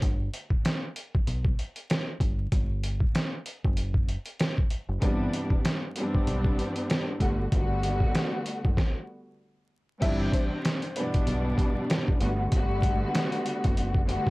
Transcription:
0.02 fingered electric bass G1, kick, closed hi-hat
0.34 closed hi-hat
0.50 kick
0.65 snare, closed hi-hat
0.96 closed hi-hat
1.15 kick
1.27 fingered electric bass B1, closed hi-hat
1.45 kick
1.59 closed hi-hat
1.76 closed hi-hat
1.90 snare, closed hi-hat
2.20 fingered electric bass G1, kick, closed hi-hat
2.52 fingered electric bass G1, kick, closed hi-hat
2.84 closed hi-hat
3.00 kick
3.15 snare, closed hi-hat
3.46 closed hi-hat
3.64 fingered electric bass F#1, kick
3.77 closed hi-hat
3.94 kick
4.09 closed hi-hat
4.26 closed hi-hat
4.40 snare, closed hi-hat
4.58 kick
4.70 closed hi-hat
4.89 fingered electric bass F#1
5.00 fingered electric bass G1, string section G2 C3 E3 G3 B3 D4, kick, closed hi-hat
5.33 closed hi-hat
5.50 kick
5.65 snare, closed hi-hat
5.96 string section G2 E3 G3 B3 C4 D4, closed hi-hat
6.15 kick
6.27 fingered electric bass B1, closed hi-hat
6.44 kick
6.59 closed hi-hat
6.76 closed hi-hat
6.90 snare, closed hi-hat
7.19 fingered electric bass G1, string section D3 G3 A3 B3 F#4, kick, closed hi-hat
7.52 fingered electric bass G1, string section D3 G3 A3 B3 F#4, kick, closed hi-hat
7.83 closed hi-hat
8.00 kick
8.15 snare, closed hi-hat
8.46 closed hi-hat
8.65 fingered electric bass F#1, kick
8.77 kick, snare
10.01 fingered electric bass G1, string section G2 C3 E3 G3 C4 D4, upright piano E4 E5, kick, closed hi-hat, crash
10.32 upright piano C4 C5, kick, closed hi-hat
10.65 snare, closed hi-hat
10.82 closed hi-hat
10.96 string section G2 B2 E3 G3 B3 D4, upright piano B3 B4, closed hi-hat
11.14 kick, closed hi-hat
11.27 fingered electric bass B1, closed hi-hat
11.58 kick, closed hi-hat
11.90 snare, closed hi-hat
12.08 kick
12.19 fingered electric bass G1, string section D3 G3 A3 B3 F#4, closed hi-hat
12.52 fingered electric bass G1, string section D3 G3 A3 B3 F#4, kick, closed hi-hat
12.82 kick, closed hi-hat
13.15 snare, closed hi-hat
13.32 closed hi-hat
13.46 closed hi-hat
13.64 fingered electric bass F#1, kick, closed hi-hat
13.77 closed hi-hat
13.94 kick
14.06 string section D3 G3 A3 B3 F#4, closed hi-hat
14.27 kick, snare

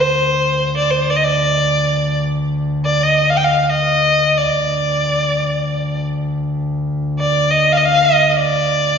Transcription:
Already playing: double bass D2, violin C5
0.77 violin D5
0.91 violin C5
1.10 violin D5
1.16 violin D#5
1.24 violin D5
2.85 violin D5
3.03 violin D#5
3.30 violin F5
3.37 violin G5
3.44 violin F5
3.62 violin F5
3.70 violin D#5
4.37 violin D5
4.56 double bass D2
7.19 violin D5
7.50 violin D#5
7.72 violin F5
7.77 violin D#5
7.86 violin F5
8.05 violin D#5
8.29 violin D#5
8.37 violin D5

